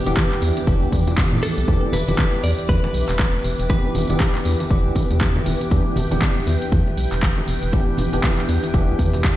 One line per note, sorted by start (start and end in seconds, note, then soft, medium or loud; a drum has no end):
0.00 1.14 G4 medium
0.00 9.37 B4 medium
0.00 9.37 E5 medium
0.00 9.37 G5 medium
0.00 5.70 D6 medium
0.06 0.13 E1 medium
0.06 0.65 E3 medium
0.06 0.65 B3 medium
0.06 0.65 D4 medium
0.06 0.65 G4 loud
0.06 closed hi-hat medium
0.06 high conga loud
0.17 kick loud
0.17 clap loud
0.17 closed hi-hat medium
0.17 muted conga medium
0.32 clap soft
0.42 0.52 E2 loud
0.42 open hi-hat loud
0.57 closed hi-hat medium
0.57 muted conga soft
0.67 0.84 E1 loud
0.67 1.65 E3 medium
0.67 1.66 B3 medium
0.67 1.66 D4 medium
0.67 1.66 G4 medium
0.67 kick loud
0.67 closed hi-hat medium
0.82 0.89 D2 loud
0.92 1.24 E2 medium
0.92 kick medium
0.92 open hi-hat loud
0.92 high conga medium
1.07 closed hi-hat medium
1.07 muted conga medium
1.07 low conga medium
1.18 kick loud
1.18 clap loud
1.18 closed hi-hat medium
1.33 1.39 A2 medium
1.33 high conga medium
1.42 1.95 A4 loud
1.42 open hi-hat loud
1.42 muted conga medium
1.58 1.64 B1 medium
1.58 closed hi-hat medium
1.68 1.78 E2 loud
1.68 1.93 E3 medium
1.68 1.93 B3 medium
1.68 1.94 D4 medium
1.68 1.94 G4 loud
1.68 kick loud
1.68 closed hi-hat medium
1.93 2.03 E1 medium
1.93 2.43 B4 loud
1.93 open hi-hat loud
1.93 muted conga medium
1.93 high conga loud
1.93 low conga medium
2.08 2.15 E1 medium
2.08 3.67 E3 medium
2.08 3.67 B3 medium
2.08 3.67 D4 medium
2.08 3.67 G4 loud
2.08 closed hi-hat medium
2.08 high conga loud
2.18 kick loud
2.18 clap loud
2.18 closed hi-hat medium
2.34 muted conga soft
2.44 2.53 E2 loud
2.44 2.50 D5 loud
2.44 open hi-hat loud
2.59 closed hi-hat medium
2.69 2.78 E2 medium
2.69 3.69 B4 loud
2.69 kick loud
2.69 closed hi-hat medium
2.84 muted conga medium
2.94 3.04 B1 medium
2.94 open hi-hat loud
3.09 3.39 E1 medium
3.09 clap soft
3.09 closed hi-hat medium
3.19 kick loud
3.19 clap loud
3.19 closed hi-hat medium
3.19 muted conga soft
3.44 3.54 E1 medium
3.44 open hi-hat loud
3.59 3.89 E1 medium
3.59 closed hi-hat medium
3.70 4.06 E3 medium
3.70 4.06 B3 medium
3.70 4.06 D4 medium
3.70 4.06 G4 loud
3.70 5.17 B4 medium
3.70 kick loud
3.70 closed hi-hat soft
3.70 muted conga medium
3.95 4.04 E1 medium
3.95 open hi-hat loud
3.95 high conga medium
3.95 low conga medium
4.09 4.16 E1 medium
4.09 4.68 E3 medium
4.09 4.68 B3 medium
4.09 4.68 D4 medium
4.09 4.68 G4 loud
4.09 closed hi-hat medium
4.09 muted conga soft
4.09 high conga medium
4.20 kick loud
4.20 clap loud
4.20 closed hi-hat medium
4.35 clap soft
4.45 4.55 E2 loud
4.45 open hi-hat loud
4.60 closed hi-hat medium
4.60 muted conga medium
4.70 4.87 E1 loud
4.70 5.69 E3 medium
4.70 5.69 B3 medium
4.70 5.69 D4 medium
4.70 5.69 G4 medium
4.70 kick loud
4.70 closed hi-hat soft
4.85 4.92 D2 loud
4.95 kick medium
4.95 open hi-hat loud
4.95 muted conga medium
4.95 high conga loud
5.11 5.40 E2 loud
5.11 closed hi-hat medium
5.11 low conga medium
5.21 kick loud
5.21 clap loud
5.21 closed hi-hat medium
5.36 high conga loud
5.46 5.56 E1 loud
5.46 open hi-hat loud
5.46 muted conga medium
5.61 closed hi-hat medium
5.71 5.81 E2 loud
5.71 5.97 E3 medium
5.71 5.97 B3 medium
5.71 5.97 D4 medium
5.71 5.97 G4 loud
5.71 9.37 G6 medium
5.71 kick loud
5.71 closed hi-hat soft
5.71 cabasa soft
5.96 6.06 E1 loud
5.96 open hi-hat loud
5.96 muted conga medium
5.96 high conga medium
5.96 low conga medium
5.96 cabasa medium
6.11 6.18 E1 medium
6.11 7.70 E3 medium
6.11 7.71 B3 medium
6.11 7.71 D4 medium
6.11 7.71 G4 loud
6.11 closed hi-hat medium
6.11 high conga medium
6.11 cabasa soft
6.22 kick loud
6.22 clap loud
6.22 closed hi-hat medium
6.22 cabasa soft
6.47 6.57 E2 loud
6.47 open hi-hat loud
6.47 muted conga medium
6.47 cabasa medium
6.62 closed hi-hat medium
6.62 cabasa soft
6.72 6.82 E2 medium
6.72 kick loud
6.72 closed hi-hat medium
6.72 cabasa soft
6.88 muted conga soft
6.97 7.07 B1 medium
6.97 open hi-hat loud
6.97 cabasa medium
7.12 7.42 E1 medium
7.12 clap soft
7.12 closed hi-hat medium
7.12 cabasa soft
7.23 kick loud
7.23 clap loud
7.23 closed hi-hat medium
7.23 cabasa soft
7.38 muted conga medium
7.48 7.57 E1 medium
7.48 open hi-hat loud
7.48 cabasa medium
7.63 7.92 E1 medium
7.63 closed hi-hat medium
7.63 cabasa soft
7.72 8.10 E3 medium
7.72 8.10 B3 medium
7.72 8.10 D4 medium
7.72 8.10 G4 loud
7.72 kick loud
7.72 closed hi-hat medium
7.72 muted conga medium
7.72 cabasa soft
7.98 8.08 E1 medium
7.98 open hi-hat loud
7.98 high conga medium
7.98 low conga medium
7.98 cabasa medium
8.13 8.20 E1 medium
8.13 8.71 E3 medium
8.13 8.71 B3 medium
8.13 8.72 D4 medium
8.13 8.72 G4 loud
8.13 closed hi-hat medium
8.13 high conga medium
8.13 cabasa soft
8.24 kick loud
8.24 clap loud
8.24 closed hi-hat medium
8.24 muted conga medium
8.24 cabasa soft
8.39 clap soft
8.49 8.58 E2 loud
8.49 open hi-hat loud
8.49 cabasa medium
8.63 closed hi-hat medium
8.63 muted conga medium
8.63 cabasa soft
8.74 8.90 E1 loud
8.74 9.37 E3 medium
8.74 9.37 B3 medium
8.74 9.37 D4 medium
8.74 9.37 G4 loud
8.74 kick loud
8.74 closed hi-hat medium
8.74 cabasa soft
8.89 8.95 D2 loud
8.99 9.31 E2 loud
8.99 kick medium
8.99 open hi-hat loud
8.99 high conga medium
8.99 cabasa medium
9.13 closed hi-hat medium
9.13 muted conga medium
9.13 low conga medium
9.13 cabasa soft
9.24 kick loud
9.24 clap loud
9.24 closed hi-hat medium
9.24 cabasa soft